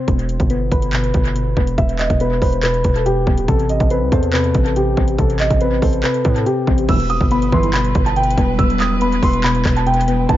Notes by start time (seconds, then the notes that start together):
0.08 E1 B2, kick, closed hi-hat
0.19 closed hi-hat
0.29 closed hi-hat
0.40 G1, kick, closed hi-hat
0.50 B3, closed hi-hat
0.72 G1 B4, kick, closed hi-hat
0.82 closed hi-hat
0.93 B2, clap, closed hi-hat
1.04 closed hi-hat
1.14 G1, kick, closed hi-hat
1.25 closed hi-hat
1.35 B2, closed hi-hat
1.57 E1 B3, kick
1.67 closed hi-hat
1.78 E1 B2 E5, kick, closed hi-hat
1.89 closed hi-hat
1.99 D#5, clap, closed hi-hat
2.10 E1, kick, closed hi-hat
2.20 B3 B4, closed hi-hat
2.42 E1 B4 C5, kick, open hi-hat
2.53 closed hi-hat
2.63 B2 B4, clap, closed hi-hat
2.74 closed hi-hat
2.84 E1, kick, closed hi-hat
2.96 A4, closed hi-hat
3.06 B2 G4, closed hi-hat
3.27 D#1 B3, kick
3.38 closed hi-hat
3.48 A1 C3 A4, kick, closed hi-hat
3.59 closed hi-hat
3.69 D#5, closed hi-hat
3.80 A1, kick, closed hi-hat
3.90 C4 B4, closed hi-hat
4.01 C2
4.12 E2 A4 C5, kick, closed hi-hat
4.23 closed hi-hat
4.33 C3 B4, clap, closed hi-hat
4.44 closed hi-hat
4.54 A1, kick, closed hi-hat
4.65 A4, closed hi-hat
4.76 C3 G4, closed hi-hat
4.97 A1 C4, kick
5.08 closed hi-hat
5.18 A1 C3 A4, kick, closed hi-hat
5.30 closed hi-hat
5.40 D#5, clap, closed hi-hat
5.50 A1, kick, closed hi-hat
5.61 C4 B4, closed hi-hat
5.82 A1 A4 C5, kick, open hi-hat
5.93 closed hi-hat
6.03 C3 B4, clap, closed hi-hat
6.14 closed hi-hat
6.25 A2, kick, closed hi-hat
6.36 A4, closed hi-hat
6.46 C3 G4, closed hi-hat
6.67 A1 C4, kick
6.78 closed hi-hat
6.88 E1 B1 G2 B2 E3 G3 E4 B4 E6, kick, closed hi-hat, crash
7.00 closed hi-hat
7.10 D#6, closed hi-hat
7.21 G1, kick
7.31 B3 B5, closed hi-hat
7.42 closed hi-hat
7.52 G1 B1 G2 E3 B4 C6, kick
7.63 closed hi-hat
7.73 B2 B5, clap, closed hi-hat
7.84 closed hi-hat
7.95 G1, kick, closed hi-hat
8.06 A5, closed hi-hat
8.16 B2 G5, closed hi-hat
8.23 closed hi-hat
8.30 closed hi-hat
8.38 E1 B3, kick, closed hi-hat
8.59 E1 B2 E6, kick, closed hi-hat
8.70 closed hi-hat
8.80 D#6, clap, closed hi-hat
9.01 B3 B5, closed hi-hat
9.12 closed hi-hat
9.23 E1 B4 C6, kick, open hi-hat
9.33 closed hi-hat
9.44 B2 B5, clap, closed hi-hat
9.55 closed hi-hat
9.65 E1, kick, clap, closed hi-hat
9.77 A5, closed hi-hat
9.86 B2 G5, closed hi-hat
9.94 closed hi-hat
10.01 closed hi-hat
10.08 B3, closed hi-hat
10.29 A1 C2 A2 C3 E3 A3 C5 A5, kick, closed hi-hat